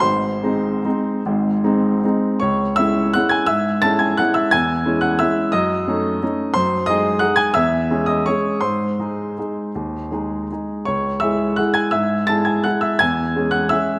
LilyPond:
\new Staff \with { instrumentName = "Grand piano" } { \time 3/4 \key cis \minor \tempo 4 = 169 << { <bis' bis''>2.~ | <bis' bis''>2 r4 | <cis'' cis'''>4 <e'' e'''>4 <fis'' fis'''>8 <gis'' gis'''>8 | <e'' e'''>4 <a'' a'''>8 <gis'' gis'''>8 <fis'' fis'''>8 <e'' e'''>8 |
<gis'' gis'''>4. <fis'' fis'''>8 <e'' e'''>4 | <dis'' dis'''>2. | <bis' bis''>4 <dis'' dis'''>4 <fis'' fis'''>8 <gis'' gis'''>8 | <e'' e'''>4. <dis'' dis'''>8 <cis'' cis'''>4 |
<bis' bis''>2.~ | <bis' bis''>2 r4 | <cis'' cis'''>4 <e'' e'''>4 <fis'' fis'''>8 <gis'' gis'''>8 | <e'' e'''>4 <a'' a'''>8 <gis'' gis'''>8 <fis'' fis'''>8 <e'' e'''>8 |
<gis'' gis'''>4. <fis'' fis'''>8 <e'' e'''>4 | } \\ { <gis,, gis,>4 <gis bis dis'>4 <gis bis dis'>4 | <gis,, gis,>4 <gis bis dis'>4 <gis bis dis'>4 | cis,4 <gis cis' e'>4 <gis cis' e'>4 | gis,4 <gis cis' e'>4 <gis cis' e'>4 |
e,4 <gis cis' e'>4 <gis cis' e'>4 | fis,4 <a cis' dis'>4 <a cis' dis'>4 | fis,4 <gis dis' gis'>4 <gis dis' gis'>4 | e,4 <gis cis' gis'>4 <gis cis' gis'>4 |
gis,4 <gis dis' gis'>4 <gis dis' gis'>4 | dis,4 <gis dis' gis'>4 <gis dis' gis'>4 | cis,4 <gis e' gis'>4 <gis e' gis'>4 | gis,4 <gis e' gis'>4 <gis e' gis'>4 |
e,4 <gis cis' gis'>4 <gis cis' gis'>4 | } >> }